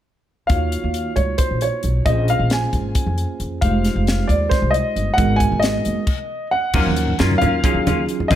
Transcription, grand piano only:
0.47 F5
1.16 C#5
1.38 C5
1.62 C#5
2.06 D#5
2.30 F5
2.53 G#5
3.61 F5
4.28 D5
4.50 C5
4.71 D#5
5.14 F#5
5.36 G#5
5.60 D#5
6.51 F#5
7.38 F5
8.28 D#5

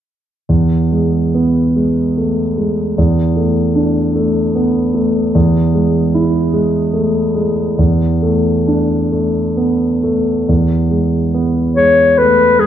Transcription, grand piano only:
0.49 E2
0.91 G#3
1.35 B3
1.76 G#3
2.17 A3
2.58 G#3
2.98 E2
3.36 A3
3.75 D4
4.15 A3
4.55 B3
4.94 A3
5.35 E2
5.75 G#3
6.15 E4
6.54 G#3
6.93 A3
7.35 G#3
7.78 E2
8.22 A3
8.67 D4
9.12 A3
9.57 B3
10.03 A3
10.49 E2
10.91 G#3
11.34 B3
11.77 G#3
12.19 A3
12.59 G#3

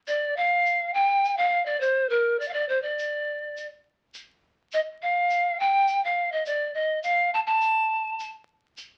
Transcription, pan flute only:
0.08 D5
0.37 F5
0.94 G5
1.37 F5
1.66 D5
1.80 C5
2.10 A#4
2.40 D5
2.48 F5
2.53 D5
2.69 C5
2.82 D5
4.74 D#5
5.03 F5
5.60 G5
6.05 F5
6.32 D#5
6.46 D5
6.74 D#5
7.03 F5
7.34 A5
7.47 A5

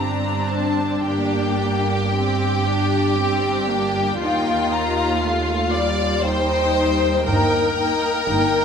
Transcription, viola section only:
Already playing: C4 D4
1.08 A#3
1.62 A#3
2.16 C4
2.67 D4
3.19 C4 D4
3.70 A#3
4.21 A#3 D#4
5.21 A3 F4
5.74 G3
6.25 G3 D#4
7.25 A#3 D#4
7.77 A#3 D#4
8.27 A#3 D#4

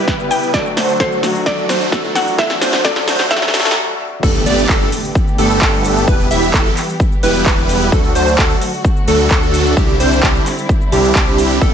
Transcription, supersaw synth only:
0.08 G3 B3 E4 G4 B4
0.54 F#3 A3 D4 F#4 A4
0.77 F#3 A3 D4 F#4 C5
1.00 F#3 A3 D4 F#4 A4
1.46 F#3 A3 D4 F#4 A4
1.69 F#3 A3 D4 F#4 C5
1.92 F#3 A3 D4 F#4 A4
2.38 F#3 A3 D4 F#4 A4
2.62 F#3 A3 D4 F#4 C5
2.85 F#3 A3 D4 F#4 A4
3.08 F#3 A3 D4 F#4 C5
3.31 A3 A4
3.54 F#3 A3 D4 F#4 A4
4.23 A3 B3 D4 G4 A4
4.46 A3 B3 D4 G4 D5
4.69 A3 B3 D4 G4 A4
5.38 A3 B3 D4 G4 A4
5.62 A3 B3 D4 G4
6.08 G3 B3 E4 G4 B4
6.31 G3 B3 E4 G4 E5
6.54 G3 B3 E4 G4 A4
7.23 G3 B3 E4 G4 B4
7.92 F#3 A3 D4 A4
8.15 F#3 A3 D4 F#4 C5
8.38 F#3 A3 D4 F#4 A4
9.08 F#3 A3 D4 F#4 A4
9.31 F#3 A3 D4 F#4 A4
9.77 G3
10.00 G3 C4 D4 E4 C5
10.23 G3 C4 G4
10.92 G3 C4 D4 E4 G4
11.62 A3 D4 A4

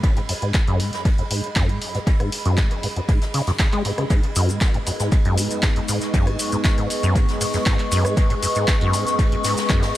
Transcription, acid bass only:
0.17 G#2
0.29 F#2
0.42 G#2
0.68 F#2
0.80 G#2
1.05 G#2
1.18 F#2
1.31 G#2
1.56 F#2
1.69 G#2
1.95 G#2
2.07 F#2
2.20 G#2
2.46 F#2
2.58 G#2
2.83 G#2
2.96 F#2
3.09 G#2
3.34 C#3
3.47 F#2
3.73 G#3
3.85 G#2
3.98 C#3
4.11 G#2
4.36 F#2
4.49 G#2
4.74 G#2
4.87 F#2
5.00 G#2
5.25 F#2
5.38 G#2
5.63 G#2
5.76 F#2
5.89 G#2
6.14 F#2
6.27 G#2
6.52 G#2
6.65 F#2
6.78 G#2
7.03 F#2
7.16 G#2
7.41 G#2
7.54 F#2
7.66 G#2
7.92 F#2
8.05 G#2
8.30 G#2
8.43 F#2
8.56 G#2
8.81 F#2
8.94 G#2
9.19 G#2
9.32 F#2
9.44 G#2
9.70 F#2
9.83 G#2

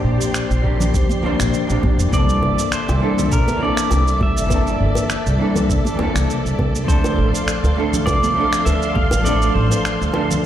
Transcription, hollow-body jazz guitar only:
Already playing: F3 A#3 C4 D4 G4
0.62 F3 A#3 C4 D4 G4
1.22 F3 A#3 C4 D4
1.26 C5
1.67 F3 A#3 C4 D4
1.71 G4
2.09 E3 A#3
2.13 C4 D4 A4
3.00 E3 A#3 C4 D4 A4
3.57 E3 A#3 C4
3.63 D4 A4
4.46 E3 A#3 C4
4.52 D4 A4
5.38 E3 A#3 C4 D4
5.42 A4
5.95 E3 A#3
5.99 C4 D4
6.03 A4
6.84 F3 A3 C4
6.90 D4 A4
7.76 F3 A3 C4 D4 A4
8.33 F3 A3 C4
8.38 D4 A4
9.21 F3 A3
9.25 C4 D4 A4
10.12 F3 A3 C4 D4
10.16 A4

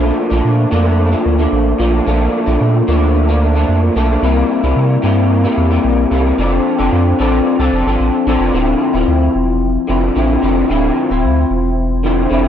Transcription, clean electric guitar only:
Already playing: A#2 F3 A3 D4
0.30 A#2 F3 A3 D4
0.71 A#2 F3 A3 D4
1.11 A#2 F3 A3 D4
1.38 A#2 F3 A3 D4
1.78 A#2 F3 A3 D4
2.06 A#2 F3 A3 D4
2.46 A#2 F3 A3 D4
2.87 A#2 F3 A3 D4
3.28 A#2 F3 A3 D4
3.55 A#2 F3 A3 D4
3.95 A#2 F3 A3 D4
4.22 C3 G3 A#3 E4
4.63 C3 G3 A#3 E4
5.02 C3 G3 A#3 E4
5.44 C3 G3 A#3 E4
5.71 C3 G3 A#3 E4
6.11 C3 G3 A#3 E4
6.38 F3 C4 D4 A4
6.78 F3 C4 D4 A4
7.19 F3 C4 D4 A4
7.60 F3 C4 D4 A4
7.87 F3 C4 D4 A4
8.27 F3 C4 D4 A4
8.54 D3 F3 C4 E4
8.93 F3 C4 E4
9.87 D3 F3 C4 E4
10.15 D3 F3 C4 E4
10.42 D3 F3 C4 E4
10.69 D3 F3 C4 E4
11.10 F3 C4 E4
12.03 D3 F3 C4 E4
12.30 D3 F3 C4 E4

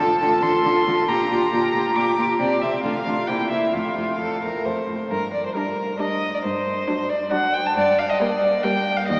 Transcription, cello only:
0.21 D3
0.42 D3
0.64 D3
0.87 D3
1.08 A#2
1.30 A#2
1.52 A#2
1.74 A#2
1.96 A#2
2.18 A#2
2.39 C3
2.61 C3
2.84 D3
3.06 D3
3.28 C3
3.51 C3
3.74 F2
3.97 F2
4.19 F2
4.42 F2
4.65 F2
4.88 F2
5.11 G2
6.45 G2
7.77 G2
9.09 D#2

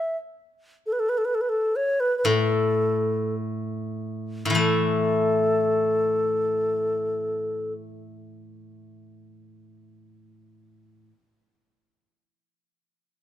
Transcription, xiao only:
Already playing: E5
0.86 A4
0.93 B4
0.99 A4
1.09 B4
1.18 A4
1.25 B4
1.35 A4
1.41 B4
1.49 A4
1.76 C#5
2.00 B4
2.18 B4
2.26 A4
4.57 A4

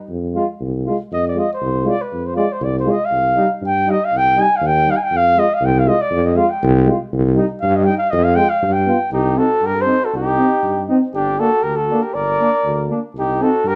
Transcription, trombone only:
0.35 F4
0.85 F4
1.36 F4
1.85 F4
2.34 F4
2.85 F4
3.36 D#4
3.87 D#4
4.36 D#4
4.87 D#4
5.35 F4
5.86 F4
6.37 F4
6.88 F4
7.36 D#4
7.87 D#4
8.37 F4
8.87 F4
9.38 D#4
9.87 D#4
10.38 D#4
10.88 D#4
11.38 D4
11.91 D4
12.40 D4
12.89 D4
13.39 D#4

